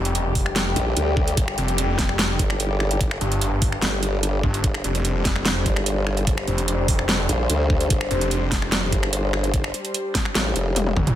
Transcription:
Already playing: F1 G3 D4 G4
0.05 closed hi-hat
0.15 closed hi-hat
0.35 kick, open hi-hat
0.46 finger snap
0.56 snare, closed hi-hat
0.76 A#1, closed hi-hat
0.96 D2, closed hi-hat
1.17 kick
1.28 closed hi-hat
1.37 G1, kick, closed hi-hat
1.48 finger snap
1.58 F1, closed hi-hat
1.68 closed hi-hat
1.78 closed hi-hat
1.99 kick, snare, open hi-hat
2.09 finger snap
2.19 snare, closed hi-hat
2.39 G1, kick, closed hi-hat
2.50 finger snap
2.60 closed hi-hat
2.80 finger snap
2.91 closed hi-hat
3.01 kick, closed hi-hat
3.11 finger snap
3.21 G1, closed hi-hat
3.32 closed hi-hat
3.41 closed hi-hat
3.62 kick, open hi-hat
3.72 finger snap
3.82 G1, snare, closed hi-hat
4.03 closed hi-hat
4.23 closed hi-hat
4.43 G1, kick
4.54 closed hi-hat
4.64 G1 C5, kick, closed hi-hat
4.74 finger snap
4.84 F1, closed hi-hat
4.95 closed hi-hat
5.05 closed hi-hat
5.25 kick, snare, open hi-hat
5.36 finger snap
5.45 snare, closed hi-hat
5.66 G1, kick, closed hi-hat
5.76 finger snap
5.86 closed hi-hat
6.07 finger snap
6.17 closed hi-hat
6.27 kick, closed hi-hat
6.38 finger snap
6.48 F1, closed hi-hat
6.58 closed hi-hat
6.68 closed hi-hat
6.88 kick, open hi-hat
6.99 finger snap
7.09 snare, closed hi-hat
7.29 A#1, closed hi-hat
7.50 D2, closed hi-hat
7.70 kick
7.81 closed hi-hat
7.90 G1, kick, closed hi-hat
8.01 finger snap
8.11 F1, closed hi-hat
8.21 closed hi-hat
8.31 closed hi-hat
8.52 kick, snare, open hi-hat
8.62 finger snap
8.72 snare, closed hi-hat
8.92 G1, kick, closed hi-hat
9.03 finger snap
9.13 closed hi-hat
9.33 finger snap
9.44 closed hi-hat
9.54 kick, closed hi-hat
9.64 finger snap
9.74 closed hi-hat
9.85 closed hi-hat
9.94 closed hi-hat
10.15 kick, snare, open hi-hat
10.25 finger snap
10.35 A1, snare, closed hi-hat
10.56 F1, closed hi-hat
10.76 closed hi-hat, high tom
10.87 high tom
10.97 F1, kick, mid tom
11.07 closed hi-hat, mid tom

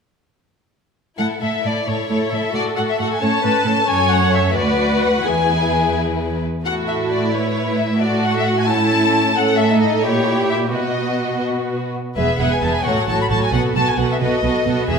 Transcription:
1.18 A2 E4 A4 F#5
1.41 A2 E4 A4 E5
1.64 A2 E4 A4 D5
1.87 A2 E4 A4 C#5
2.09 A2 E4 A4
2.32 A2 E4 A4 E5
2.53 A2 F#4 A4 D5
2.77 A2 F#4 A4 F#5
2.89 E5
2.99 A2 F#4 A4 F#5
3.13 G#5
3.21 A2 C#4 A4 C#5 A5
3.43 A2 C#4 A4 B4
3.66 A2 C#4 A4
3.88 F#2 C#4 A4 C#5 G#5
4.11 F#5
4.34 E5
4.50 E5
4.55 D2 F#4 B4 D5
5.02 F#5
5.25 E2 E4 G#4 B4 G#5
6.65 A2 E4 F#4 A4 F#5
6.88 E5
7.10 D5
7.33 E4 B4 C#5
7.79 E5
8.00 F#4 A4 D5
8.24 F#5
8.36 E5
8.46 F#5
8.59 G#5
8.68 C#4 E4 A4 A5
9.35 A2 C#4 A4 F#5
9.58 E5
9.70 D#4
9.81 D#5
10.03 A#2 E4 G4 C#5
10.50 E5
10.73 B2 B3 F#4 D#5
12.16 E1 E2 B3 G#4 B4 E5
12.39 E1 E2 B3 G#4 B4 E5 F#5
12.52 G#5
12.62 E1 E2 B3 G#4 B4 E5 A5
12.75 G#5
12.84 A1 A2 F#3 F#4 A4 C#5 F#5
13.07 A1 A2 F#3 F#4 A4 C#5 A5
13.21 B5
13.29 A1 A2 F#3 F#4 A4 C#5 A5
13.43 G#5
13.52 B1 B2 B3 F#4 A4 B4 F#5
13.75 B1 B2 B3 F#4 A4 B4 A5
13.89 G#5
13.97 B1 B2 B3 F#4 A4 B4 F#5
14.12 E5
14.20 B1 B2 B3 F#4 A4 B4 D#5
14.43 B1 B2 B3 F#4 A4 B4
14.65 B1 B2 B3 F#4 A4 B4
14.88 E1 E2 B3 G#4 B4 E5

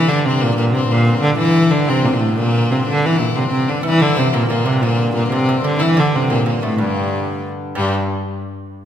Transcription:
Already playing: G2 D3 E4
0.08 D3 D4
0.25 C3 C4
0.41 A#2 A#3
0.56 A#2 A#3
0.73 C3 C4
0.89 A#2 A#3
1.07 C4
1.22 D3 D4
1.37 E3 E4
1.71 D3
1.87 C3 C4
2.04 A#2 A#3
2.08 C3
2.13 A#2
2.20 A2 A3
2.38 A#2 A#3
2.71 C3 C4
2.86 D3 D4
3.03 E3 E4
3.20 A#2
3.35 C3 C4
3.52 C3
3.68 D3 D4
3.82 G2 D3 E3 E4
4.00 D3
4.17 C3
4.33 A#2 A#3
4.48 A#2 A#3
4.65 C3
4.81 A#2 A#3
5.13 A#2 A#3
5.31 C3 C4
5.49 C3
5.64 D3
5.78 E3 E4
5.82 E3
5.96 D3 D4
6.14 C3 C4
6.29 A#2 A#3
6.46 A#2 A#3
6.63 A2 A3
6.78 G2 G3
7.75 G2 G3

